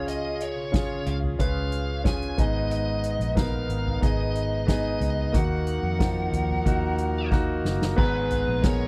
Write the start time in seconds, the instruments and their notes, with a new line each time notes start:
Already playing: fingered electric bass C#2, grand piano C#3 C#4 F4 G#4, string section C#3 C#4 F4 G#4
0.08 lead electric guitar D#5, closed hi-hat
0.40 lead electric guitar C#5, closed hi-hat
0.57 fingered electric bass B1
0.72 grand piano C#4 F4 G#4, kick, snare, closed hi-hat
1.06 fingered electric bass C#2, lead electric guitar F5, closed hi-hat
1.23 floor tom
1.39 fingered electric bass C#2, grand piano C#4 F4 B4, lead electric guitar F5, kick, closed hi-hat
1.72 closed hi-hat
2.04 grand piano C#4 F4 G#4, lead electric guitar G#5, kick, snare, closed hi-hat
2.22 closed hi-hat
2.38 fingered electric bass G#1, grand piano G#2 B3 D#4 G#4, string section G#3 B3 D#4, lead electric guitar D#5, kick, closed hi-hat, floor tom
2.71 lead electric guitar D#5, closed hi-hat
3.04 closed hi-hat
3.20 fingered electric bass A#1, closed hi-hat
3.35 grand piano B3 D#4 A#4, lead electric guitar F5, kick, snare, closed hi-hat
3.69 fingered electric bass G#1, closed hi-hat
3.86 floor tom
4.01 fingered electric bass G#1, grand piano B3 D#4 G#4, lead electric guitar D#5, kick, closed hi-hat
4.35 closed hi-hat
4.67 grand piano B3 D#4 G#4, kick, snare, closed hi-hat
4.71 lead electric guitar D#5
5.01 fingered electric bass C#2, closed hi-hat, floor tom
5.32 fingered electric bass D#2, grand piano D#3 A#3 D#4 F#4, string section D#3 A#4 F#5, lead electric guitar F#5, kick, closed hi-hat
5.67 closed hi-hat
5.83 fingered electric bass F2
5.99 grand piano F3 A#3 D#4, kick, snare, closed hi-hat
6.33 fingered electric bass D#2, closed hi-hat, floor tom
6.50 floor tom
6.65 fingered electric bass D#2, grand piano A#3 D#4 F#4, kick, closed hi-hat
6.98 closed hi-hat
7.31 grand piano A#3 D#4 F#4, kick, snare
7.65 fingered electric bass F#1, snare
7.81 snare
7.96 fingered electric bass G#1, grand piano G#2 B3 G#4 A#5, string section G#3 B3 G#4 A#5, lead electric guitar B4, kick, crash
8.30 closed hi-hat, floor tom
8.48 fingered electric bass A#1
8.62 grand piano B3 G#4 A#4, lead electric guitar C#5, kick, snare, closed hi-hat